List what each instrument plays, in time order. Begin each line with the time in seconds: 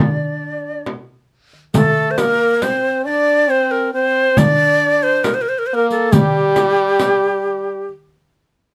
Already playing: french horn D4, ney D5
0.21 darbuka ka
0.44 darbuka ka
0.86 darbuka tek, frame drum
1.53 darbuka ka
1.74 french horn A3, ney A4, riq, frame drum, darbuka dum
2.11 ney C5
2.18 french horn A#3, ney A#4, riq, darbuka tek, frame drum
2.56 french horn A#3
2.62 french horn C4, ney C5, riq, darbuka tek, frame drum
3.05 french horn D4, ney D5, darbuka ka
3.48 french horn C4, ney C5
3.71 ney A#4
3.94 french horn C4, ney C5
4.30 french horn C4
4.37 french horn D4, ney D5, riq, frame drum, darbuka dum
4.83 darbuka ka
5.03 ney C5
5.24 ney A#4, riq, darbuka tek, frame drum
5.34 ney C5
5.42 ney A#4
5.49 ney C5
5.59 ney A#4
5.67 ney C5
5.73 french horn A#3, ney A#4
5.90 ney A4, riq
6.12 french horn G3, ney G4, riq, frame drum, darbuka dum
6.56 riq, darbuka tek, frame drum
7.00 riq, darbuka tek, frame drum
7.46 darbuka ka
7.89 darbuka ka